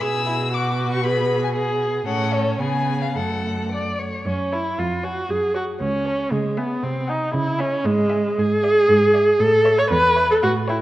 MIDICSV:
0, 0, Header, 1, 5, 480
1, 0, Start_track
1, 0, Key_signature, 3, "minor"
1, 0, Tempo, 514580
1, 9, Time_signature, 2, 2, 24, 8
1, 1930, Tempo, 542005
1, 4330, Tempo, 509771
1, 7210, Tempo, 519031
1, 9964, End_track
2, 0, Start_track
2, 0, Title_t, "Violin"
2, 0, Program_c, 0, 40
2, 9, Note_on_c, 0, 88, 87
2, 497, Note_on_c, 0, 86, 69
2, 511, Note_off_c, 0, 88, 0
2, 844, Note_off_c, 0, 86, 0
2, 849, Note_on_c, 0, 85, 64
2, 963, Note_on_c, 0, 83, 73
2, 977, Note_off_c, 0, 85, 0
2, 1325, Note_off_c, 0, 83, 0
2, 1341, Note_on_c, 0, 80, 56
2, 1386, Note_off_c, 0, 80, 0
2, 1931, Note_on_c, 0, 78, 70
2, 2164, Note_on_c, 0, 73, 57
2, 2177, Note_off_c, 0, 78, 0
2, 2400, Note_off_c, 0, 73, 0
2, 2405, Note_on_c, 0, 80, 67
2, 2770, Note_on_c, 0, 77, 54
2, 2783, Note_off_c, 0, 80, 0
2, 2892, Note_on_c, 0, 78, 53
2, 2905, Note_off_c, 0, 77, 0
2, 3384, Note_off_c, 0, 78, 0
2, 4099, Note_on_c, 0, 81, 44
2, 4272, Note_off_c, 0, 81, 0
2, 4578, Note_on_c, 0, 80, 36
2, 4754, Note_off_c, 0, 80, 0
2, 5062, Note_on_c, 0, 81, 39
2, 5237, Note_off_c, 0, 81, 0
2, 5544, Note_on_c, 0, 81, 36
2, 5719, Note_off_c, 0, 81, 0
2, 6023, Note_on_c, 0, 80, 44
2, 6199, Note_off_c, 0, 80, 0
2, 6506, Note_on_c, 0, 80, 42
2, 6679, Note_off_c, 0, 80, 0
2, 6979, Note_on_c, 0, 80, 51
2, 7153, Note_off_c, 0, 80, 0
2, 7459, Note_on_c, 0, 80, 49
2, 7638, Note_off_c, 0, 80, 0
2, 7947, Note_on_c, 0, 76, 54
2, 8118, Note_off_c, 0, 76, 0
2, 8411, Note_on_c, 0, 76, 48
2, 8585, Note_off_c, 0, 76, 0
2, 8882, Note_on_c, 0, 76, 59
2, 9060, Note_off_c, 0, 76, 0
2, 9355, Note_on_c, 0, 76, 55
2, 9539, Note_off_c, 0, 76, 0
2, 9845, Note_on_c, 0, 79, 52
2, 9964, Note_off_c, 0, 79, 0
2, 9964, End_track
3, 0, Start_track
3, 0, Title_t, "Violin"
3, 0, Program_c, 1, 40
3, 10, Note_on_c, 1, 68, 52
3, 477, Note_off_c, 1, 68, 0
3, 492, Note_on_c, 1, 66, 49
3, 961, Note_off_c, 1, 66, 0
3, 975, Note_on_c, 1, 71, 57
3, 1441, Note_off_c, 1, 71, 0
3, 1446, Note_on_c, 1, 68, 50
3, 1920, Note_off_c, 1, 68, 0
3, 1935, Note_on_c, 1, 69, 54
3, 2398, Note_off_c, 1, 69, 0
3, 2403, Note_on_c, 1, 68, 43
3, 2881, Note_on_c, 1, 69, 43
3, 2894, Note_off_c, 1, 68, 0
3, 3329, Note_off_c, 1, 69, 0
3, 3393, Note_on_c, 1, 74, 46
3, 3632, Note_on_c, 1, 73, 38
3, 3646, Note_off_c, 1, 74, 0
3, 3870, Note_off_c, 1, 73, 0
3, 4106, Note_on_c, 1, 73, 39
3, 4275, Note_off_c, 1, 73, 0
3, 4568, Note_on_c, 1, 73, 37
3, 4748, Note_off_c, 1, 73, 0
3, 5052, Note_on_c, 1, 73, 41
3, 5231, Note_off_c, 1, 73, 0
3, 5530, Note_on_c, 1, 73, 39
3, 5712, Note_off_c, 1, 73, 0
3, 6019, Note_on_c, 1, 76, 47
3, 6197, Note_off_c, 1, 76, 0
3, 6493, Note_on_c, 1, 78, 48
3, 6672, Note_off_c, 1, 78, 0
3, 6976, Note_on_c, 1, 76, 51
3, 7151, Note_off_c, 1, 76, 0
3, 7450, Note_on_c, 1, 76, 51
3, 7633, Note_off_c, 1, 76, 0
3, 7946, Note_on_c, 1, 74, 56
3, 8118, Note_off_c, 1, 74, 0
3, 8421, Note_on_c, 1, 74, 53
3, 8590, Note_off_c, 1, 74, 0
3, 8890, Note_on_c, 1, 73, 62
3, 9064, Note_off_c, 1, 73, 0
3, 9364, Note_on_c, 1, 73, 54
3, 9543, Note_off_c, 1, 73, 0
3, 9836, Note_on_c, 1, 73, 54
3, 9964, Note_off_c, 1, 73, 0
3, 9964, End_track
4, 0, Start_track
4, 0, Title_t, "Viola"
4, 0, Program_c, 2, 41
4, 4, Note_on_c, 2, 68, 57
4, 228, Note_off_c, 2, 68, 0
4, 245, Note_on_c, 2, 64, 53
4, 320, Note_off_c, 2, 64, 0
4, 480, Note_on_c, 2, 66, 54
4, 974, Note_on_c, 2, 68, 46
4, 988, Note_off_c, 2, 66, 0
4, 1446, Note_off_c, 2, 68, 0
4, 1452, Note_on_c, 2, 68, 52
4, 1923, Note_off_c, 2, 68, 0
4, 1940, Note_on_c, 2, 61, 49
4, 2399, Note_on_c, 2, 59, 46
4, 2412, Note_off_c, 2, 61, 0
4, 2894, Note_on_c, 2, 57, 38
4, 2907, Note_off_c, 2, 59, 0
4, 3687, Note_off_c, 2, 57, 0
4, 3871, Note_on_c, 2, 61, 49
4, 4105, Note_on_c, 2, 64, 51
4, 4119, Note_off_c, 2, 61, 0
4, 4337, Note_on_c, 2, 65, 46
4, 4351, Note_off_c, 2, 64, 0
4, 4574, Note_on_c, 2, 66, 52
4, 4588, Note_off_c, 2, 65, 0
4, 4821, Note_on_c, 2, 68, 56
4, 4835, Note_off_c, 2, 66, 0
4, 5054, Note_off_c, 2, 68, 0
4, 5060, Note_on_c, 2, 66, 52
4, 5135, Note_off_c, 2, 66, 0
4, 5300, Note_on_c, 2, 61, 64
4, 5782, Note_on_c, 2, 56, 53
4, 5796, Note_off_c, 2, 61, 0
4, 6021, Note_on_c, 2, 59, 54
4, 6035, Note_off_c, 2, 56, 0
4, 6266, Note_on_c, 2, 60, 52
4, 6280, Note_off_c, 2, 59, 0
4, 6511, Note_on_c, 2, 63, 58
4, 6525, Note_off_c, 2, 60, 0
4, 6742, Note_off_c, 2, 63, 0
4, 6747, Note_on_c, 2, 64, 62
4, 6986, Note_on_c, 2, 61, 64
4, 7000, Note_off_c, 2, 64, 0
4, 7230, Note_on_c, 2, 56, 76
4, 7244, Note_off_c, 2, 61, 0
4, 7718, Note_on_c, 2, 68, 88
4, 7732, Note_off_c, 2, 56, 0
4, 8652, Note_on_c, 2, 69, 89
4, 8666, Note_off_c, 2, 68, 0
4, 9011, Note_on_c, 2, 73, 76
4, 9025, Note_off_c, 2, 69, 0
4, 9123, Note_off_c, 2, 73, 0
4, 9129, Note_on_c, 2, 71, 92
4, 9481, Note_off_c, 2, 71, 0
4, 9499, Note_on_c, 2, 69, 65
4, 9544, Note_off_c, 2, 69, 0
4, 9605, Note_on_c, 2, 66, 87
4, 9679, Note_off_c, 2, 66, 0
4, 9847, Note_on_c, 2, 64, 56
4, 9921, Note_off_c, 2, 64, 0
4, 9964, End_track
5, 0, Start_track
5, 0, Title_t, "Cello"
5, 0, Program_c, 3, 42
5, 15, Note_on_c, 3, 47, 52
5, 1896, Note_off_c, 3, 47, 0
5, 1924, Note_on_c, 3, 45, 46
5, 2369, Note_off_c, 3, 45, 0
5, 2399, Note_on_c, 3, 49, 43
5, 2884, Note_on_c, 3, 42, 37
5, 2897, Note_off_c, 3, 49, 0
5, 3682, Note_off_c, 3, 42, 0
5, 3864, Note_on_c, 3, 42, 46
5, 4233, Note_off_c, 3, 42, 0
5, 4333, Note_on_c, 3, 41, 49
5, 4712, Note_off_c, 3, 41, 0
5, 4813, Note_on_c, 3, 42, 40
5, 5193, Note_off_c, 3, 42, 0
5, 5295, Note_on_c, 3, 37, 51
5, 5676, Note_off_c, 3, 37, 0
5, 5772, Note_on_c, 3, 49, 48
5, 6154, Note_off_c, 3, 49, 0
5, 6260, Note_on_c, 3, 48, 49
5, 6636, Note_off_c, 3, 48, 0
5, 6734, Note_on_c, 3, 49, 55
5, 7110, Note_off_c, 3, 49, 0
5, 7216, Note_on_c, 3, 44, 62
5, 7597, Note_off_c, 3, 44, 0
5, 7707, Note_on_c, 3, 44, 61
5, 8080, Note_off_c, 3, 44, 0
5, 8178, Note_on_c, 3, 44, 65
5, 8547, Note_off_c, 3, 44, 0
5, 8647, Note_on_c, 3, 45, 69
5, 9022, Note_off_c, 3, 45, 0
5, 9122, Note_on_c, 3, 40, 66
5, 9504, Note_off_c, 3, 40, 0
5, 9608, Note_on_c, 3, 45, 63
5, 9964, Note_off_c, 3, 45, 0
5, 9964, End_track
0, 0, End_of_file